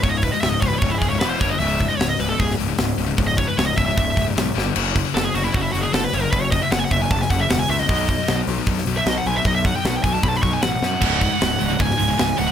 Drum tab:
CC |----------------|----------------|----------------|x---------------|
HH |o-o-o-o-o-o-o-o-|o-o-o-o-o-o-o-o-|o-o-o-o-o-o-o---|--o-o-o-o-o-o-o-|
SD |----o-------o---|----o----o--o---|----o-------o-o-|----o-------o---|
BD |o-o---o-o-o---o-|--o-----o-------|o-o---o-o-o-----|--o-----o-------|

CC |----------------|----------------|----------------|x---------------|
HH |o-o-o-o-o-o-o-o-|o-o-o-o-o-o-o-o-|o-o-o-o-o-o-o---|--o-o-o-o-o-o-o-|
SD |----o----o--o---|----o----o--o---|----o----o--o-o-|----o----o--o---|
BD |o-o---o-o-o-----|o-o-----o-------|o-o---o-o-o-----|o-o-----o-------|